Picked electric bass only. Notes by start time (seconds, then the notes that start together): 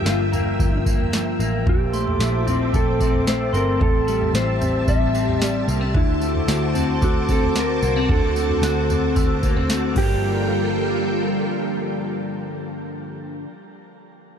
0.06 G1
0.60 G1
1.39 A1
1.66 A#1
2.19 A#1
2.74 A#1
3.54 G1
3.80 A1
4.34 A1
4.88 A1
5.68 C2
5.95 D2
6.48 D2
7.02 D2
7.83 C2
8.09 D2
8.62 D2
9.16 D2
9.96 G1